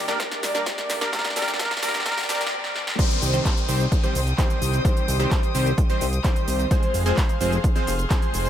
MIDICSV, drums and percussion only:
0, 0, Header, 1, 2, 480
1, 0, Start_track
1, 0, Key_signature, -3, "minor"
1, 0, Tempo, 465116
1, 1163, Time_signature, 4, 2, 24, 8
1, 8768, End_track
2, 0, Start_track
2, 0, Title_t, "Drums"
2, 85, Note_on_c, 9, 38, 81
2, 85, Note_on_c, 9, 42, 41
2, 88, Note_on_c, 9, 82, 35
2, 188, Note_off_c, 9, 38, 0
2, 188, Note_off_c, 9, 42, 0
2, 191, Note_off_c, 9, 82, 0
2, 203, Note_on_c, 9, 36, 113
2, 204, Note_on_c, 9, 38, 93
2, 204, Note_on_c, 9, 42, 65
2, 208, Note_on_c, 9, 82, 47
2, 306, Note_off_c, 9, 36, 0
2, 308, Note_off_c, 9, 38, 0
2, 308, Note_off_c, 9, 42, 0
2, 311, Note_off_c, 9, 82, 0
2, 325, Note_on_c, 9, 38, 86
2, 325, Note_on_c, 9, 42, 41
2, 328, Note_on_c, 9, 82, 24
2, 428, Note_off_c, 9, 38, 0
2, 428, Note_off_c, 9, 42, 0
2, 431, Note_off_c, 9, 82, 0
2, 444, Note_on_c, 9, 38, 96
2, 444, Note_on_c, 9, 46, 98
2, 448, Note_on_c, 9, 82, 81
2, 548, Note_off_c, 9, 38, 0
2, 548, Note_off_c, 9, 46, 0
2, 551, Note_off_c, 9, 82, 0
2, 565, Note_on_c, 9, 38, 87
2, 565, Note_on_c, 9, 42, 40
2, 569, Note_on_c, 9, 82, 36
2, 669, Note_off_c, 9, 38, 0
2, 669, Note_off_c, 9, 42, 0
2, 672, Note_off_c, 9, 82, 0
2, 683, Note_on_c, 9, 36, 113
2, 686, Note_on_c, 9, 38, 100
2, 686, Note_on_c, 9, 42, 69
2, 689, Note_on_c, 9, 82, 49
2, 786, Note_off_c, 9, 36, 0
2, 789, Note_off_c, 9, 38, 0
2, 789, Note_off_c, 9, 42, 0
2, 792, Note_off_c, 9, 82, 0
2, 805, Note_on_c, 9, 38, 87
2, 805, Note_on_c, 9, 42, 40
2, 808, Note_on_c, 9, 82, 24
2, 908, Note_off_c, 9, 38, 0
2, 908, Note_off_c, 9, 42, 0
2, 911, Note_off_c, 9, 82, 0
2, 925, Note_on_c, 9, 38, 102
2, 925, Note_on_c, 9, 46, 102
2, 928, Note_on_c, 9, 82, 86
2, 1028, Note_off_c, 9, 38, 0
2, 1028, Note_off_c, 9, 46, 0
2, 1031, Note_off_c, 9, 82, 0
2, 1046, Note_on_c, 9, 38, 92
2, 1046, Note_on_c, 9, 42, 42
2, 1049, Note_on_c, 9, 82, 37
2, 1149, Note_off_c, 9, 38, 0
2, 1149, Note_off_c, 9, 42, 0
2, 1152, Note_off_c, 9, 82, 0
2, 1163, Note_on_c, 9, 36, 117
2, 1166, Note_on_c, 9, 38, 108
2, 1166, Note_on_c, 9, 42, 71
2, 1169, Note_on_c, 9, 82, 48
2, 1226, Note_off_c, 9, 38, 0
2, 1226, Note_on_c, 9, 38, 94
2, 1266, Note_off_c, 9, 36, 0
2, 1269, Note_off_c, 9, 42, 0
2, 1272, Note_off_c, 9, 82, 0
2, 1285, Note_off_c, 9, 38, 0
2, 1285, Note_on_c, 9, 38, 90
2, 1285, Note_on_c, 9, 42, 42
2, 1288, Note_on_c, 9, 82, 24
2, 1345, Note_off_c, 9, 38, 0
2, 1345, Note_on_c, 9, 38, 89
2, 1388, Note_off_c, 9, 42, 0
2, 1392, Note_off_c, 9, 82, 0
2, 1405, Note_off_c, 9, 38, 0
2, 1405, Note_on_c, 9, 38, 99
2, 1405, Note_on_c, 9, 46, 102
2, 1408, Note_on_c, 9, 82, 83
2, 1466, Note_off_c, 9, 38, 0
2, 1466, Note_on_c, 9, 38, 91
2, 1508, Note_off_c, 9, 46, 0
2, 1511, Note_off_c, 9, 82, 0
2, 1526, Note_off_c, 9, 38, 0
2, 1526, Note_on_c, 9, 38, 93
2, 1526, Note_on_c, 9, 42, 43
2, 1529, Note_on_c, 9, 82, 36
2, 1585, Note_off_c, 9, 38, 0
2, 1585, Note_on_c, 9, 38, 90
2, 1629, Note_off_c, 9, 42, 0
2, 1632, Note_off_c, 9, 82, 0
2, 1643, Note_on_c, 9, 36, 116
2, 1646, Note_off_c, 9, 38, 0
2, 1646, Note_on_c, 9, 38, 106
2, 1646, Note_on_c, 9, 42, 72
2, 1649, Note_on_c, 9, 82, 47
2, 1705, Note_off_c, 9, 38, 0
2, 1705, Note_on_c, 9, 38, 94
2, 1746, Note_off_c, 9, 36, 0
2, 1749, Note_off_c, 9, 42, 0
2, 1752, Note_off_c, 9, 82, 0
2, 1765, Note_off_c, 9, 38, 0
2, 1765, Note_on_c, 9, 38, 94
2, 1765, Note_on_c, 9, 42, 43
2, 1768, Note_on_c, 9, 82, 24
2, 1825, Note_off_c, 9, 38, 0
2, 1825, Note_on_c, 9, 38, 96
2, 1868, Note_off_c, 9, 42, 0
2, 1871, Note_off_c, 9, 82, 0
2, 1885, Note_off_c, 9, 38, 0
2, 1885, Note_on_c, 9, 38, 108
2, 1885, Note_on_c, 9, 46, 100
2, 1888, Note_on_c, 9, 82, 83
2, 1945, Note_off_c, 9, 38, 0
2, 1945, Note_on_c, 9, 38, 94
2, 1988, Note_off_c, 9, 46, 0
2, 1992, Note_off_c, 9, 82, 0
2, 2005, Note_off_c, 9, 38, 0
2, 2005, Note_on_c, 9, 38, 90
2, 2005, Note_on_c, 9, 42, 43
2, 2008, Note_on_c, 9, 82, 35
2, 2064, Note_off_c, 9, 38, 0
2, 2064, Note_on_c, 9, 38, 92
2, 2108, Note_off_c, 9, 42, 0
2, 2111, Note_off_c, 9, 82, 0
2, 2123, Note_on_c, 9, 36, 114
2, 2124, Note_off_c, 9, 38, 0
2, 2124, Note_on_c, 9, 38, 105
2, 2124, Note_on_c, 9, 42, 68
2, 2127, Note_on_c, 9, 82, 46
2, 2184, Note_off_c, 9, 38, 0
2, 2184, Note_on_c, 9, 38, 90
2, 2226, Note_off_c, 9, 36, 0
2, 2227, Note_off_c, 9, 42, 0
2, 2230, Note_off_c, 9, 82, 0
2, 2245, Note_off_c, 9, 38, 0
2, 2245, Note_on_c, 9, 38, 97
2, 2245, Note_on_c, 9, 46, 60
2, 2249, Note_on_c, 9, 82, 24
2, 2304, Note_off_c, 9, 38, 0
2, 2304, Note_on_c, 9, 38, 92
2, 2348, Note_off_c, 9, 46, 0
2, 2352, Note_off_c, 9, 82, 0
2, 2364, Note_off_c, 9, 38, 0
2, 2364, Note_on_c, 9, 38, 106
2, 2364, Note_on_c, 9, 46, 99
2, 2368, Note_on_c, 9, 82, 81
2, 2424, Note_off_c, 9, 38, 0
2, 2424, Note_on_c, 9, 38, 94
2, 2467, Note_off_c, 9, 46, 0
2, 2471, Note_off_c, 9, 82, 0
2, 2484, Note_off_c, 9, 38, 0
2, 2484, Note_on_c, 9, 38, 97
2, 2484, Note_on_c, 9, 42, 43
2, 2488, Note_on_c, 9, 82, 34
2, 2544, Note_off_c, 9, 38, 0
2, 2544, Note_on_c, 9, 38, 95
2, 2588, Note_off_c, 9, 42, 0
2, 2591, Note_off_c, 9, 82, 0
2, 2648, Note_off_c, 9, 38, 0
2, 2724, Note_on_c, 9, 38, 53
2, 2828, Note_off_c, 9, 38, 0
2, 2844, Note_on_c, 9, 38, 77
2, 2947, Note_off_c, 9, 38, 0
2, 2964, Note_on_c, 9, 38, 84
2, 3067, Note_off_c, 9, 38, 0
2, 3083, Note_on_c, 9, 36, 119
2, 3085, Note_on_c, 9, 42, 72
2, 3085, Note_on_c, 9, 49, 109
2, 3088, Note_on_c, 9, 82, 46
2, 3186, Note_off_c, 9, 36, 0
2, 3188, Note_off_c, 9, 42, 0
2, 3188, Note_off_c, 9, 49, 0
2, 3192, Note_off_c, 9, 82, 0
2, 3205, Note_on_c, 9, 42, 41
2, 3209, Note_on_c, 9, 82, 22
2, 3308, Note_off_c, 9, 42, 0
2, 3312, Note_off_c, 9, 82, 0
2, 3325, Note_on_c, 9, 46, 105
2, 3328, Note_on_c, 9, 82, 78
2, 3428, Note_off_c, 9, 46, 0
2, 3431, Note_off_c, 9, 82, 0
2, 3445, Note_on_c, 9, 42, 43
2, 3449, Note_on_c, 9, 82, 34
2, 3549, Note_off_c, 9, 42, 0
2, 3552, Note_off_c, 9, 82, 0
2, 3563, Note_on_c, 9, 36, 115
2, 3563, Note_on_c, 9, 39, 127
2, 3565, Note_on_c, 9, 42, 70
2, 3568, Note_on_c, 9, 82, 46
2, 3666, Note_off_c, 9, 36, 0
2, 3667, Note_off_c, 9, 39, 0
2, 3668, Note_off_c, 9, 42, 0
2, 3672, Note_off_c, 9, 82, 0
2, 3685, Note_on_c, 9, 42, 42
2, 3689, Note_on_c, 9, 82, 22
2, 3788, Note_off_c, 9, 42, 0
2, 3792, Note_off_c, 9, 82, 0
2, 3804, Note_on_c, 9, 46, 104
2, 3808, Note_on_c, 9, 82, 78
2, 3908, Note_off_c, 9, 46, 0
2, 3911, Note_off_c, 9, 82, 0
2, 3925, Note_on_c, 9, 42, 41
2, 3928, Note_on_c, 9, 82, 32
2, 4028, Note_off_c, 9, 42, 0
2, 4031, Note_off_c, 9, 82, 0
2, 4043, Note_on_c, 9, 36, 122
2, 4045, Note_on_c, 9, 42, 70
2, 4048, Note_on_c, 9, 82, 45
2, 4146, Note_off_c, 9, 36, 0
2, 4148, Note_off_c, 9, 42, 0
2, 4151, Note_off_c, 9, 82, 0
2, 4165, Note_on_c, 9, 42, 43
2, 4168, Note_on_c, 9, 82, 22
2, 4268, Note_off_c, 9, 42, 0
2, 4271, Note_off_c, 9, 82, 0
2, 4285, Note_on_c, 9, 46, 105
2, 4288, Note_on_c, 9, 82, 76
2, 4388, Note_off_c, 9, 46, 0
2, 4392, Note_off_c, 9, 82, 0
2, 4405, Note_on_c, 9, 42, 42
2, 4408, Note_on_c, 9, 82, 33
2, 4508, Note_off_c, 9, 42, 0
2, 4511, Note_off_c, 9, 82, 0
2, 4522, Note_on_c, 9, 36, 120
2, 4524, Note_on_c, 9, 39, 126
2, 4526, Note_on_c, 9, 42, 69
2, 4529, Note_on_c, 9, 82, 47
2, 4626, Note_off_c, 9, 36, 0
2, 4627, Note_off_c, 9, 39, 0
2, 4629, Note_off_c, 9, 42, 0
2, 4632, Note_off_c, 9, 82, 0
2, 4646, Note_on_c, 9, 42, 41
2, 4649, Note_on_c, 9, 82, 23
2, 4749, Note_off_c, 9, 42, 0
2, 4752, Note_off_c, 9, 82, 0
2, 4766, Note_on_c, 9, 46, 107
2, 4769, Note_on_c, 9, 82, 80
2, 4869, Note_off_c, 9, 46, 0
2, 4872, Note_off_c, 9, 82, 0
2, 4886, Note_on_c, 9, 42, 43
2, 4889, Note_on_c, 9, 82, 36
2, 4989, Note_off_c, 9, 42, 0
2, 4992, Note_off_c, 9, 82, 0
2, 5003, Note_on_c, 9, 36, 127
2, 5006, Note_on_c, 9, 42, 70
2, 5009, Note_on_c, 9, 82, 45
2, 5106, Note_off_c, 9, 36, 0
2, 5109, Note_off_c, 9, 42, 0
2, 5112, Note_off_c, 9, 82, 0
2, 5126, Note_on_c, 9, 42, 41
2, 5130, Note_on_c, 9, 82, 21
2, 5229, Note_off_c, 9, 42, 0
2, 5233, Note_off_c, 9, 82, 0
2, 5245, Note_on_c, 9, 46, 112
2, 5249, Note_on_c, 9, 82, 76
2, 5349, Note_off_c, 9, 46, 0
2, 5352, Note_off_c, 9, 82, 0
2, 5365, Note_on_c, 9, 42, 39
2, 5368, Note_on_c, 9, 82, 34
2, 5468, Note_off_c, 9, 42, 0
2, 5471, Note_off_c, 9, 82, 0
2, 5483, Note_on_c, 9, 36, 119
2, 5483, Note_on_c, 9, 39, 127
2, 5484, Note_on_c, 9, 42, 68
2, 5487, Note_on_c, 9, 82, 44
2, 5586, Note_off_c, 9, 36, 0
2, 5586, Note_off_c, 9, 39, 0
2, 5587, Note_off_c, 9, 42, 0
2, 5591, Note_off_c, 9, 82, 0
2, 5605, Note_on_c, 9, 42, 41
2, 5608, Note_on_c, 9, 82, 22
2, 5708, Note_off_c, 9, 42, 0
2, 5711, Note_off_c, 9, 82, 0
2, 5725, Note_on_c, 9, 46, 111
2, 5729, Note_on_c, 9, 82, 78
2, 5828, Note_off_c, 9, 46, 0
2, 5832, Note_off_c, 9, 82, 0
2, 5845, Note_on_c, 9, 42, 39
2, 5849, Note_on_c, 9, 82, 33
2, 5949, Note_off_c, 9, 42, 0
2, 5952, Note_off_c, 9, 82, 0
2, 5963, Note_on_c, 9, 36, 127
2, 5965, Note_on_c, 9, 42, 64
2, 5968, Note_on_c, 9, 82, 43
2, 6066, Note_off_c, 9, 36, 0
2, 6068, Note_off_c, 9, 42, 0
2, 6071, Note_off_c, 9, 82, 0
2, 6084, Note_on_c, 9, 42, 40
2, 6088, Note_on_c, 9, 82, 22
2, 6188, Note_off_c, 9, 42, 0
2, 6191, Note_off_c, 9, 82, 0
2, 6204, Note_on_c, 9, 46, 108
2, 6207, Note_on_c, 9, 82, 75
2, 6307, Note_off_c, 9, 46, 0
2, 6310, Note_off_c, 9, 82, 0
2, 6324, Note_on_c, 9, 42, 42
2, 6328, Note_on_c, 9, 82, 33
2, 6427, Note_off_c, 9, 42, 0
2, 6431, Note_off_c, 9, 82, 0
2, 6442, Note_on_c, 9, 39, 127
2, 6443, Note_on_c, 9, 36, 122
2, 6444, Note_on_c, 9, 42, 67
2, 6447, Note_on_c, 9, 82, 44
2, 6545, Note_off_c, 9, 39, 0
2, 6546, Note_off_c, 9, 36, 0
2, 6547, Note_off_c, 9, 42, 0
2, 6550, Note_off_c, 9, 82, 0
2, 6564, Note_on_c, 9, 42, 39
2, 6567, Note_on_c, 9, 82, 22
2, 6667, Note_off_c, 9, 42, 0
2, 6670, Note_off_c, 9, 82, 0
2, 6685, Note_on_c, 9, 46, 110
2, 6688, Note_on_c, 9, 82, 76
2, 6788, Note_off_c, 9, 46, 0
2, 6791, Note_off_c, 9, 82, 0
2, 6805, Note_on_c, 9, 42, 42
2, 6809, Note_on_c, 9, 82, 34
2, 6908, Note_off_c, 9, 42, 0
2, 6912, Note_off_c, 9, 82, 0
2, 6923, Note_on_c, 9, 36, 125
2, 6925, Note_on_c, 9, 42, 69
2, 6928, Note_on_c, 9, 82, 45
2, 7027, Note_off_c, 9, 36, 0
2, 7028, Note_off_c, 9, 42, 0
2, 7031, Note_off_c, 9, 82, 0
2, 7045, Note_on_c, 9, 42, 39
2, 7049, Note_on_c, 9, 82, 21
2, 7149, Note_off_c, 9, 42, 0
2, 7152, Note_off_c, 9, 82, 0
2, 7164, Note_on_c, 9, 46, 111
2, 7168, Note_on_c, 9, 82, 75
2, 7267, Note_off_c, 9, 46, 0
2, 7271, Note_off_c, 9, 82, 0
2, 7285, Note_on_c, 9, 42, 41
2, 7288, Note_on_c, 9, 82, 33
2, 7388, Note_off_c, 9, 42, 0
2, 7391, Note_off_c, 9, 82, 0
2, 7403, Note_on_c, 9, 39, 127
2, 7404, Note_on_c, 9, 36, 121
2, 7405, Note_on_c, 9, 42, 66
2, 7408, Note_on_c, 9, 82, 44
2, 7506, Note_off_c, 9, 39, 0
2, 7507, Note_off_c, 9, 36, 0
2, 7508, Note_off_c, 9, 42, 0
2, 7511, Note_off_c, 9, 82, 0
2, 7525, Note_on_c, 9, 42, 39
2, 7529, Note_on_c, 9, 82, 22
2, 7629, Note_off_c, 9, 42, 0
2, 7632, Note_off_c, 9, 82, 0
2, 7644, Note_on_c, 9, 46, 108
2, 7647, Note_on_c, 9, 82, 72
2, 7747, Note_off_c, 9, 46, 0
2, 7751, Note_off_c, 9, 82, 0
2, 7764, Note_on_c, 9, 42, 39
2, 7768, Note_on_c, 9, 82, 31
2, 7868, Note_off_c, 9, 42, 0
2, 7871, Note_off_c, 9, 82, 0
2, 7884, Note_on_c, 9, 36, 127
2, 7885, Note_on_c, 9, 42, 63
2, 7888, Note_on_c, 9, 82, 42
2, 7987, Note_off_c, 9, 36, 0
2, 7988, Note_off_c, 9, 42, 0
2, 7991, Note_off_c, 9, 82, 0
2, 8005, Note_on_c, 9, 42, 38
2, 8008, Note_on_c, 9, 82, 22
2, 8108, Note_off_c, 9, 42, 0
2, 8112, Note_off_c, 9, 82, 0
2, 8126, Note_on_c, 9, 46, 107
2, 8129, Note_on_c, 9, 82, 74
2, 8229, Note_off_c, 9, 46, 0
2, 8232, Note_off_c, 9, 82, 0
2, 8245, Note_on_c, 9, 42, 39
2, 8248, Note_on_c, 9, 82, 32
2, 8348, Note_off_c, 9, 42, 0
2, 8352, Note_off_c, 9, 82, 0
2, 8364, Note_on_c, 9, 36, 127
2, 8364, Note_on_c, 9, 39, 122
2, 8365, Note_on_c, 9, 42, 66
2, 8368, Note_on_c, 9, 82, 43
2, 8467, Note_off_c, 9, 36, 0
2, 8467, Note_off_c, 9, 39, 0
2, 8468, Note_off_c, 9, 42, 0
2, 8472, Note_off_c, 9, 82, 0
2, 8485, Note_on_c, 9, 42, 39
2, 8488, Note_on_c, 9, 82, 22
2, 8588, Note_off_c, 9, 42, 0
2, 8592, Note_off_c, 9, 82, 0
2, 8605, Note_on_c, 9, 46, 110
2, 8608, Note_on_c, 9, 82, 76
2, 8708, Note_off_c, 9, 46, 0
2, 8711, Note_off_c, 9, 82, 0
2, 8725, Note_on_c, 9, 42, 40
2, 8728, Note_on_c, 9, 82, 34
2, 8768, Note_off_c, 9, 42, 0
2, 8768, Note_off_c, 9, 82, 0
2, 8768, End_track
0, 0, End_of_file